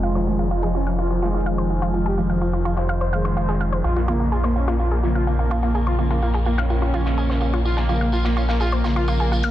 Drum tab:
HH |---------------x|---x-x----------|---------------x|---x-x----------|
TB |x-x-x-x-x-x-x-x-|x-x-x-x-x-x-x-x-|x-x-x-x-x-x-x-x-|x-x-x-x-x-x-x-x-|
SD |-o---o-o--o-----|-------o---o-o--|-o---o-o--o-----|-------o---o-o--|

HH |---------------x|
TB |x-x-x-x-x-x-x-x-|
SD |-o---o-o--o-----|